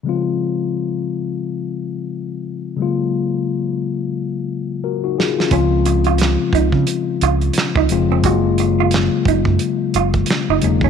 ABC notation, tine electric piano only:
X:1
M:4/4
L:1/16
Q:"Swing 16ths" 1/4=88
K:Dblyd
V:1 name="Tine electric piano"
z16 | z12 [_GB] [EG] [FA] [DF]- | [DF] z12 z3 | z16 |]
V:2 name="Tine electric piano" clef=bass
[D,F,A,CF]16 | [D,_G,A,B,F]16 | [D,F,A,CF]6 z8 [D,F,A,CF]2 | [D,_G,A,B,F]6 z8 [D,G,A,B,E]2 |]